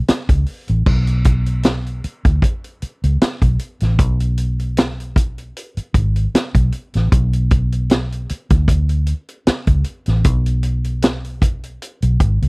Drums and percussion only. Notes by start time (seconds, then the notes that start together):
0.08 snare, closed hi-hat
0.29 kick, closed hi-hat
0.46 open hi-hat
0.68 closed hi-hat
0.86 kick, crash
1.07 closed hi-hat
1.24 kick, closed hi-hat
1.46 closed hi-hat
1.63 snare, closed hi-hat
1.86 closed hi-hat
2.04 closed hi-hat
2.25 kick, closed hi-hat
2.42 kick, closed hi-hat
2.64 closed hi-hat
2.82 closed hi-hat
3.04 closed hi-hat
3.21 snare, closed hi-hat
3.42 kick, closed hi-hat
3.59 closed hi-hat
3.80 snare, closed hi-hat
3.99 kick, closed hi-hat
4.20 closed hi-hat
4.37 closed hi-hat
4.59 closed hi-hat
4.77 snare, closed hi-hat
5.00 closed hi-hat
5.16 kick, closed hi-hat
5.38 closed hi-hat
5.57 closed hi-hat
5.77 closed hi-hat
5.94 kick, closed hi-hat
6.16 closed hi-hat
6.35 snare, closed hi-hat
6.55 kick, closed hi-hat
6.72 closed hi-hat
6.94 snare, closed hi-hat
7.12 kick, closed hi-hat
7.33 closed hi-hat
7.51 kick, closed hi-hat
7.72 closed hi-hat
7.90 snare, closed hi-hat
8.12 closed hi-hat
8.29 closed hi-hat
8.50 kick, closed hi-hat
8.68 kick, closed hi-hat
8.89 closed hi-hat
9.07 closed hi-hat
9.28 closed hi-hat
9.47 snare, closed hi-hat
9.67 kick, closed hi-hat
9.84 closed hi-hat
10.06 snare, closed hi-hat
10.24 kick, closed hi-hat
10.46 closed hi-hat
10.63 closed hi-hat
10.84 closed hi-hat
11.02 snare, closed hi-hat
11.24 closed hi-hat
11.42 kick, closed hi-hat
11.63 closed hi-hat
11.82 closed hi-hat
12.02 closed hi-hat
12.20 kick, closed hi-hat
12.42 closed hi-hat